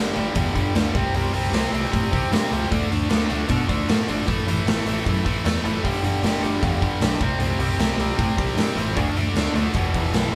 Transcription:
Already playing: G1 G2 D3 G3
0.15 G1 G2 D3 G3, open hi-hat
0.34 E2 G2 D3 G3, kick, open hi-hat
0.54 G1 G2 D3 G3, kick, open hi-hat
0.75 D2 G2 D3 G3, snare, open hi-hat
0.94 C2 C3 G3 C4, kick, open hi-hat
1.14 C2 C3 G3 C4, open hi-hat
1.33 C2 C3 G3 C4, open hi-hat
1.52 C2 C3 G3 C4, snare, open hi-hat
1.71 C2 C3 G3 C4, open hi-hat
1.91 A2 C3 G3 C4, kick, open hi-hat
2.12 C2 C3 G3 C4, kick, open hi-hat
2.31 G2 C3 G3 C4, snare, open hi-hat
2.51 C#2 C3 G3 C4, open hi-hat
2.70 D2 D3 A3 D4, kick, open hi-hat
2.91 D2 D3 A3 D4, open hi-hat
3.10 D2 D3 A3 D4, snare, open hi-hat
3.30 D2 D3 A3 D4, open hi-hat
3.48 B2 D3 A3 D4, kick, open hi-hat
3.68 D2 D3 A3 D4, kick, open hi-hat
3.88 A2 D3 A3 D4, snare, open hi-hat
4.08 G#1 D3 A3 D4, open hi-hat
4.26 A1 A2 E3 A3, kick, open hi-hat
4.47 A1 A2 E3 A3, open hi-hat
4.66 A1 A2 E3 A3, snare, open hi-hat
4.85 A1 A2 E3 A3, open hi-hat
5.04 F#2 A2 E3 A3, kick, open hi-hat
5.24 A1 A2 E3 A3, kick, open hi-hat
5.45 E2 A2 E3 A3, snare, open hi-hat
5.64 F#1 A2 E3 A3, open hi-hat
5.83 G1 G2 D3 G3, kick, open hi-hat
6.03 G1 G2 D3 G3, open hi-hat
6.22 G1 G2 D3 G3, snare, open hi-hat
6.42 G1 G2 D3 G3, open hi-hat
6.62 E2 G2 D3 G3, kick, open hi-hat
6.81 G1 G2 D3 G3, kick, open hi-hat
7.01 B1 G2 D3 G3, snare, open hi-hat
7.21 C2 C3 G3 C4, kick, open hi-hat
7.39 C2 C3 G3 C4, open hi-hat
7.59 C2 C3 G3 C4, open hi-hat
7.78 C2 C3 G3 C4, snare, open hi-hat
7.98 C2 C3 G3 C4, open hi-hat
8.17 A2 C3 G3 C4, kick, open hi-hat
8.37 C2 C3 G3 C4, kick, open hi-hat
8.55 G2 C3 G3 C4, snare, open hi-hat
8.75 A1 C3 G3 C4, open hi-hat
8.96 D2 D3 A3 D4, kick, open hi-hat
9.14 D2 D3 A3, open hi-hat
9.18 D4
9.34 D2 D3 A3 D4, snare, open hi-hat
9.54 D2 D3 A3 D4, open hi-hat
9.74 E1 E2 B2 E3, kick, open hi-hat
9.94 E1 E2 B2 E3, kick, open hi-hat
10.13 B1 E2 B2 E3, snare, open hi-hat

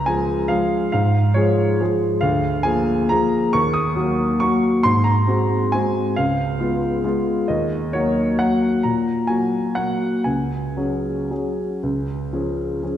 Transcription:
Already playing: C#2 A#5
0.06 F3 G#3 G#4 G#5
0.48 F3 G#3 G#4 F5
0.92 G#2 F5
1.34 F3 G#3 G#4 C#5
1.80 F3 G#3 G#4
2.21 D2 F5
2.63 F3 A#3 G#4 G#5
3.09 F3 A#3 G#4 A#5
3.53 D#2 C#6
3.74 D#6
3.96 F#3 A#3 F#4
4.40 F#3 A#3 F#4 C#6
4.83 G#2 C6
5.04 A#5
5.28 G#3 C4 F#4
5.72 G#3 C4 F#4 G#5
6.16 C#2 F5
6.60 G#3 B3 F4
7.04 G#3 B3 F4
7.48 D#2 D#5
7.93 F#3 A#3 F#4 C#5
8.39 F#3 A#3 F#4 F#5
8.83 A#2 A#5
9.27 F#3 A#3 F#4 G#5
9.75 F#3 A#3 F#4 F#5
10.24 C#2 G#5
10.77 F#3 C#4 G#4
11.31 F#3 C#4 G#4
11.83 C#2
12.33 F3 C#4 G#4
12.83 F3 C#4 G#4

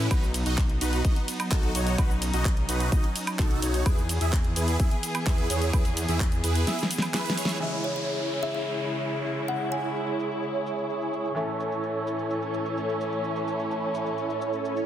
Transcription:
0.11 B1 F#3 B3 D#4 F#4 B4, kick, closed hi-hat, high woodblock, shaker
0.23 shaker
0.34 open hi-hat, ride, shaker
0.46 B1 D#4 F#4 D#5, closed hi-hat, shaker
0.58 kick, clap, closed hi-hat, shaker
0.69 closed hi-hat
0.81 B1 D#4 F#4 B4, open hi-hat, ride, shaker
0.93 closed hi-hat, shaker
1.05 B1 D#4 F#4 D#5, kick, closed hi-hat, shaker
1.16 closed hi-hat
1.28 open hi-hat, ride, shaker
1.40 closed hi-hat, high woodblock, shaker
1.51 B1 D#4 F#4 A4, kick, clap, closed hi-hat, shaker
1.63 closed hi-hat
1.75 B1 D#4 F#4 C#5, open hi-hat, ride, shaker
1.87 closed hi-hat, shaker
1.98 B1 C#4 D#4 F#4 B4, kick, closed hi-hat, high woodblock, shaker
2.11 shaker
2.22 open hi-hat, ride, shaker
2.33 B1 D#4 F#4 D#5, closed hi-hat, shaker
2.45 kick, clap, closed hi-hat, shaker
2.57 closed hi-hat
2.69 B1 D#4 F#4 B4, open hi-hat, ride, shaker
2.80 closed hi-hat, shaker
2.92 B1 D#4 F#4 D#5, kick, closed hi-hat, shaker
3.04 closed hi-hat
3.16 open hi-hat, ride, shaker
3.27 closed hi-hat, high woodblock, shaker
3.39 B1 D#4 F#4 A4, kick, clap, closed hi-hat, shaker
3.51 closed hi-hat
3.62 B1 D#4 F#4 C#5, open hi-hat, ride, shaker
3.74 closed hi-hat, shaker
3.86 E2 E3 B3 E4 G#4 B4, kick, closed hi-hat, high woodblock, shaker
3.98 shaker
4.09 open hi-hat, ride, shaker
4.21 E2 E4 G#4 E5, closed hi-hat, shaker
4.33 kick, clap, closed hi-hat, shaker
4.44 closed hi-hat
4.56 E2 E4 G#4 B4, open hi-hat, ride, shaker
4.68 closed hi-hat, shaker
4.80 E2 E4 G#4 E5, kick, closed hi-hat, shaker
4.91 closed hi-hat
5.03 open hi-hat, ride, shaker
5.15 closed hi-hat, high woodblock, shaker
5.26 E2 E4 G#4 B4, kick, clap, closed hi-hat, shaker
5.38 closed hi-hat
5.50 E2 E4 G#4 C#5, open hi-hat, ride, shaker
5.62 closed hi-hat, shaker
5.73 E2 E4 G#4 B4, kick, closed hi-hat, high woodblock, shaker
5.85 open hi-hat, shaker
5.97 open hi-hat, ride, shaker
6.09 E2 E4 G#4 E5, closed hi-hat, shaker
6.20 kick, clap, closed hi-hat, shaker
6.32 closed hi-hat, shaker
6.44 E2 E4 G#4 B4, open hi-hat, ride, shaker
6.55 closed hi-hat, shaker
6.67 E4 G#4 E5, snare, closed hi-hat, shaker
6.79 snare, closed hi-hat, shaker
6.91 open hi-hat, ride, shaker
6.98 snare, closed hi-hat, high woodblock
7.03 shaker
7.14 E4 G#4 B4, snare, clap, closed hi-hat, shaker
7.26 snare, closed hi-hat, shaker
7.37 E4 G#4 C#5, open hi-hat, ride, shaker
7.45 snare, closed hi-hat
7.50 shaker
7.60 C#3 E3 G#3 C#4 E4 G#4 C#5, downlifter, shaker
7.84 C#5
7.96 C#5
8.43 E5
8.55 E5
8.79 shaker
9.02 shaker
9.14 shaker
9.26 shaker
9.37 shaker
9.48 F#5
9.72 G#5, shaker
9.84 shaker
9.96 shaker
10.19 shaker
10.31 shaker
10.43 shaker
10.55 shaker
10.66 shaker
10.78 shaker
10.90 shaker
11.02 shaker
11.13 shaker
11.25 shaker
11.35 A2 E3 A3 C#4 E4 A4 C#5, shaker
11.60 shaker
11.72 shaker
11.83 shaker
12.07 shaker
12.19 shaker
12.30 shaker
12.42 shaker
12.54 shaker
12.66 shaker
12.77 shaker
12.89 shaker
13.01 shaker
13.12 shaker
13.24 shaker
13.36 shaker
13.48 shaker
13.59 shaker
13.71 shaker
13.94 shaker
14.06 shaker
14.17 swell, shaker
14.30 shaker
14.41 shaker
14.53 shaker
14.65 shaker
14.77 shaker

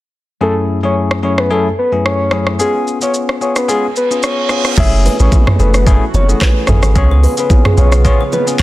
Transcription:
0.41 F#2 A3 C#4 E4 G#4 A4
0.83 F#2 A3 C#4 E4 G#4 C#5
1.11 cross-stick
1.23 F#2 A3 C#4 E4 G#4 C#5
1.38 B4, cross-stick
1.50 F#2 A3 C#4 E4 G#4 A4
1.79 B4
1.92 F#2 A3 C#4 E4 G#4
2.06 C#5, cross-stick
2.31 F#2 A3 C#4 E4 G#4, cross-stick
2.47 cross-stick
2.59 B3 C#4 F4 G#4, shaker
2.87 shaker
3.01 B3 C#4 F4 G#4 C#5, shaker
3.14 shaker
3.29 cross-stick
3.41 B3 C#4 F4 G#4 C#5, shaker
3.56 B4, cross-stick, shaker
3.68 B3 C#4 F4 G#4, reverse cymbal, shaker
3.96 B4, shaker
4.11 B3 C#4 F4 G#4, shaker
4.23 C#5, cross-stick, shaker
4.49 B3 C#4 F4 G#4, cross-stick, shaker
4.65 cross-stick, shaker
4.77 F#1 E3 A3 C#4 E4 F#4 G#4 C#5 E5, kick, crash, low conga, shaker
5.05 B4, open hi-hat, low bongo, shaker
5.19 A1 A3 C#4 E4 G#4 C#5, shaker
5.32 kick, high bongo, low bongo, shaker
5.47 cross-stick, mid tom, low bongo
5.59 F#1 A3 C#4 E4 G#4 A4 B4, shaker
5.74 B4, cross-stick, shaker
5.86 A3 C#4 E4 G#4, kick, low conga, shaker
6.14 F#1 C#5, high bongo, low bongo, shaker
6.29 A3 C#4 E4 G#4, shaker
6.41 B4, kick, cross-stick, clap, high bongo, shaker
6.67 G#1 A3 C#4 E4 G#4 A4, cross-stick, mid tom, low conga, shaker
6.83 cross-stick, shaker
6.95 C#2 C#3 B3 C#4 F4 G#4 C#5, kick, low conga, shaker
7.11 C#5
7.23 B4, open hi-hat, low bongo, shaker
7.37 B3 C#4 F4 G#4 B4, shaker
7.50 kick, high bongo, low bongo, shaker
7.65 G#4, cross-stick, mid tom, low bongo
7.77 B1 B3 C#4 F4 G#4 B4 C#5, shaker
7.92 cross-stick, shaker
8.04 B3 C#4 F4 G#4 C#5, kick, low conga, shaker
8.21 C#5
8.32 B4 C#5, high bongo, low bongo, shaker
8.47 B3 C#4 F4 G#4, shaker
8.59 C#2, kick, shaker

